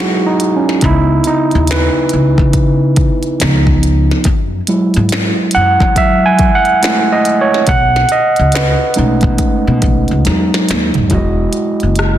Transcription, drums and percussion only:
0.00 finger snap
0.40 closed hi-hat
0.69 snare
0.81 kick, closed hi-hat
1.24 closed hi-hat
1.51 closed hi-hat
1.67 snare, closed hi-hat
1.72 finger snap
2.09 closed hi-hat
2.38 kick
2.53 kick, closed hi-hat
2.96 kick, closed hi-hat
3.23 closed hi-hat
3.40 finger snap, snare, closed hi-hat
3.67 kick
3.83 closed hi-hat
4.11 snare
4.24 kick, closed hi-hat
4.67 closed hi-hat
4.94 closed hi-hat
5.09 snare, closed hi-hat
5.14 finger snap
5.51 closed hi-hat
5.80 kick
5.96 kick, closed hi-hat
6.39 kick, closed hi-hat
6.65 closed hi-hat
6.83 finger snap, snare, closed hi-hat
7.25 closed hi-hat
7.54 snare
7.67 kick, closed hi-hat
7.96 snare
8.09 closed hi-hat
8.36 closed hi-hat
8.52 snare, closed hi-hat
8.57 finger snap
8.94 closed hi-hat
9.21 kick, closed hi-hat
9.38 kick, closed hi-hat
9.82 kick, closed hi-hat
10.08 closed hi-hat
10.25 snare, closed hi-hat
10.54 snare
10.69 snare, closed hi-hat
10.94 closed hi-hat, floor tom
11.10 kick, closed hi-hat
11.53 closed hi-hat
11.80 closed hi-hat
11.96 cross-stick, closed hi-hat

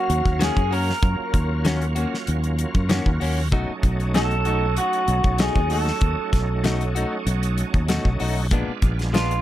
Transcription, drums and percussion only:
0.10 closed hi-hat
0.26 kick, closed hi-hat
0.41 snare, closed hi-hat
0.57 kick, closed hi-hat
0.72 open hi-hat
0.90 snare
1.03 kick, closed hi-hat
1.34 kick, closed hi-hat
1.65 snare, closed hi-hat
1.81 closed hi-hat
1.96 closed hi-hat
2.14 snare
2.27 closed hi-hat
2.44 closed hi-hat
2.59 closed hi-hat
2.75 kick, closed hi-hat
2.89 snare, closed hi-hat
3.06 kick
3.21 open hi-hat
3.52 kick, closed hi-hat
3.83 kick, closed hi-hat
4.00 closed hi-hat
4.14 snare, closed hi-hat
4.31 closed hi-hat
4.45 closed hi-hat
4.77 closed hi-hat
4.93 closed hi-hat
5.08 closed hi-hat
5.24 kick, closed hi-hat
5.38 snare, closed hi-hat
5.55 kick, closed hi-hat
5.70 open hi-hat
5.88 snare
6.01 kick, closed hi-hat
6.33 kick, snare, closed hi-hat
6.64 snare, closed hi-hat
6.81 closed hi-hat
6.96 closed hi-hat
7.27 closed hi-hat
7.43 closed hi-hat
7.58 closed hi-hat
7.74 kick, closed hi-hat
7.88 snare, closed hi-hat
8.05 kick
8.20 open hi-hat
8.51 kick, closed hi-hat
8.82 kick, closed hi-hat
8.99 snare, closed hi-hat
9.14 snare, closed hi-hat
9.31 closed hi-hat

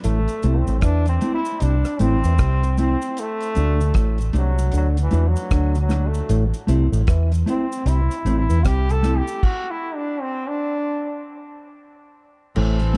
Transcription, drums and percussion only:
0.04 closed hi-hat, cabasa
0.28 closed hi-hat, cabasa
0.43 closed hi-hat, cabasa
0.67 cabasa
0.81 kick, cross-stick, closed hi-hat, cabasa
1.06 closed hi-hat, cabasa
1.21 closed hi-hat, cabasa
1.45 cabasa
1.60 closed hi-hat, cabasa
1.85 cross-stick, closed hi-hat, cabasa
1.99 closed hi-hat, cabasa
2.24 closed hi-hat, cabasa
2.38 kick, cross-stick, closed hi-hat, cabasa
2.63 closed hi-hat, cabasa
2.78 closed hi-hat, cabasa
3.02 cabasa
3.17 closed hi-hat, cabasa
3.41 closed hi-hat, cabasa
3.55 closed hi-hat, cabasa
3.81 cabasa
3.94 kick, cross-stick, closed hi-hat, cabasa
4.18 closed hi-hat, cabasa
4.33 closed hi-hat, cabasa
4.58 cabasa
4.72 closed hi-hat, cabasa
4.97 closed hi-hat, cabasa
5.11 closed hi-hat, cabasa
5.36 cabasa
5.51 kick, cross-stick, closed hi-hat, cabasa
5.75 closed hi-hat, cabasa
5.90 cross-stick, closed hi-hat, cabasa
6.14 cabasa
6.29 closed hi-hat, cabasa
6.54 closed hi-hat, cabasa
6.68 closed hi-hat, cabasa
6.93 cabasa
7.07 kick, cross-stick, closed hi-hat, cabasa
7.32 closed hi-hat, cabasa
7.47 closed hi-hat, cabasa
7.72 cabasa
7.86 closed hi-hat, cabasa
8.11 closed hi-hat, cabasa
8.26 closed hi-hat, cabasa
8.50 cabasa
8.65 kick, cross-stick, closed hi-hat, cabasa
8.89 closed hi-hat, cabasa
9.04 cross-stick, closed hi-hat, cabasa
9.28 cabasa
9.43 kick, crash
12.56 crash
12.79 closed hi-hat

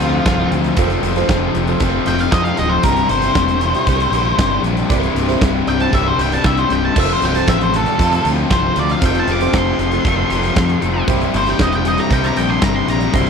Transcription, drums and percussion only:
0.00 closed hi-hat
0.26 kick, snare, closed hi-hat
0.52 closed hi-hat
0.64 closed hi-hat
0.77 kick, closed hi-hat
0.90 closed hi-hat
1.03 closed hi-hat
1.16 snare, closed hi-hat
1.29 kick, snare, closed hi-hat
1.55 closed hi-hat
1.67 closed hi-hat
1.80 kick, closed hi-hat
2.06 closed hi-hat
2.19 closed hi-hat
2.32 kick, snare, closed hi-hat
2.45 closed hi-hat
2.57 closed hi-hat
2.83 kick, closed hi-hat
2.96 closed hi-hat
3.09 closed hi-hat
3.22 snare, closed hi-hat
3.35 kick, snare, closed hi-hat
3.48 closed hi-hat
3.61 closed hi-hat
3.75 closed hi-hat
3.87 kick, closed hi-hat
4.00 closed hi-hat
4.13 closed hi-hat
4.39 kick, snare, closed hi-hat
4.64 closed hi-hat
4.77 closed hi-hat
4.90 kick, closed hi-hat
5.03 closed hi-hat
5.16 closed hi-hat
5.29 snare, closed hi-hat
5.41 kick, snare, closed hi-hat
5.67 closed hi-hat
5.80 closed hi-hat
5.93 kick, closed hi-hat
6.19 closed hi-hat
6.32 closed hi-hat
6.44 kick, snare, closed hi-hat
6.57 closed hi-hat
6.70 closed hi-hat
6.96 kick, crash
7.09 closed hi-hat
7.22 closed hi-hat
7.35 closed hi-hat
7.48 kick, snare, closed hi-hat
7.61 closed hi-hat
7.74 closed hi-hat
7.86 closed hi-hat
7.99 kick, closed hi-hat
8.13 closed hi-hat
8.25 closed hi-hat
8.51 kick, snare, closed hi-hat
8.76 closed hi-hat
8.89 closed hi-hat
9.02 kick, closed hi-hat
9.15 closed hi-hat
9.28 closed hi-hat
9.41 closed hi-hat
9.53 kick, snare, closed hi-hat
9.79 closed hi-hat
9.92 closed hi-hat
10.05 kick, closed hi-hat
10.30 closed hi-hat
10.43 closed hi-hat
10.56 kick, snare, closed hi-hat
10.69 closed hi-hat
10.82 closed hi-hat
11.08 kick, closed hi-hat
11.21 closed hi-hat
11.34 closed hi-hat
11.46 snare, closed hi-hat
11.59 kick, snare, closed hi-hat
11.73 closed hi-hat
11.85 closed hi-hat
11.98 closed hi-hat
12.11 kick, closed hi-hat
12.24 closed hi-hat
12.37 closed hi-hat
12.62 kick, snare, closed hi-hat
12.88 closed hi-hat
13.01 closed hi-hat
13.14 kick, closed hi-hat
13.27 closed hi-hat

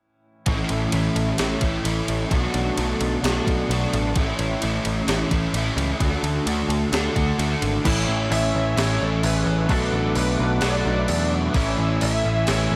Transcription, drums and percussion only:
0.46 kick, ride
0.69 ride
0.92 ride
1.16 ride
1.38 snare, ride
1.61 kick, ride
1.85 ride
2.08 ride
2.31 kick, ride
2.54 ride
2.78 ride
3.01 ride
3.24 snare, ride
3.47 kick, ride
3.71 ride
3.93 ride
4.16 kick, ride
4.39 ride
4.62 ride
4.85 ride
5.08 snare, ride
5.31 kick, ride
5.54 ride
5.78 ride
6.00 kick, ride
6.24 ride
6.47 ride
6.70 ride
6.93 snare, ride
7.16 kick, ride
7.39 ride
7.62 ride
7.85 kick, crash
8.32 crash
8.77 snare, crash
9.23 crash
9.69 kick, crash
10.15 crash
10.61 snare, crash
11.08 crash
11.54 kick, crash
12.01 crash
12.47 snare, crash

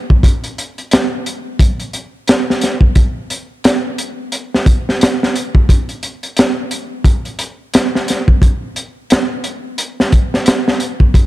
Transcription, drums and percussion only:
0.10 kick
0.23 kick, closed hi-hat
0.44 closed hi-hat
0.58 closed hi-hat
0.78 closed hi-hat
0.91 snare, closed hi-hat
1.26 closed hi-hat
1.59 kick, closed hi-hat
1.80 closed hi-hat
1.93 closed hi-hat
2.28 snare, closed hi-hat
2.50 snare
2.61 snare, closed hi-hat
2.81 kick
2.95 kick, closed hi-hat
3.30 closed hi-hat
3.64 snare, closed hi-hat
3.98 closed hi-hat
4.32 closed hi-hat
4.54 snare
4.66 kick, closed hi-hat
4.89 snare
5.01 snare, closed hi-hat
5.23 snare
5.36 closed hi-hat
5.55 kick
5.69 kick, closed hi-hat
5.89 closed hi-hat
6.03 closed hi-hat
6.23 closed hi-hat
6.37 snare, closed hi-hat
6.71 closed hi-hat
7.04 kick, closed hi-hat
7.25 closed hi-hat
7.39 closed hi-hat
7.74 snare, closed hi-hat
7.95 snare
8.08 snare, closed hi-hat
8.28 kick
8.42 kick, closed hi-hat
8.76 closed hi-hat
9.10 snare, closed hi-hat
9.44 closed hi-hat
9.78 closed hi-hat
10.00 snare
10.12 kick, closed hi-hat
10.34 snare
10.46 snare, closed hi-hat
10.68 snare
10.80 closed hi-hat
11.00 kick
11.14 kick, closed hi-hat

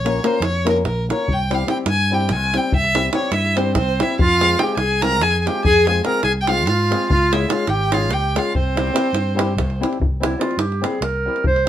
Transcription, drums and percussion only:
0.06 davul high
0.24 davul high
0.42 davul high
0.67 davul high
0.76 davul high
0.85 davul high
1.10 davul high
1.29 davul low
1.51 davul high
1.68 davul high
1.86 davul high
2.21 davul high
2.29 davul high
2.54 davul high
2.72 davul low
2.84 davul high
2.95 davul high
3.13 davul high
3.23 davul high
3.32 davul high
3.45 davul high
3.57 davul high
3.66 davul high
3.75 davul high, davul low
4.00 davul high
4.10 davul high
4.19 davul low
4.41 davul high
4.59 davul high
4.78 davul high
5.02 davul high
5.21 davul high
5.47 davul high
5.65 davul low
5.87 davul high
6.05 davul high
6.23 davul high
6.47 davul high
6.57 davul high
6.67 davul high
6.92 davul high
7.11 davul low
7.33 davul high
7.50 davul high
7.67 davul high
7.92 davul high
8.02 davul high
8.11 davul high
8.36 davul high
8.55 davul low
8.77 davul high
8.87 davul high
8.96 davul high
9.15 davul high
9.39 davul high
9.58 davul high, davul low
9.70 davul high
9.83 davul high
9.93 davul high
10.02 davul low
10.23 davul high
10.41 davul high
10.51 davul high
10.59 davul high
10.72 davul high
10.84 davul high
11.02 davul high
11.36 davul high
11.44 davul low
11.56 davul high

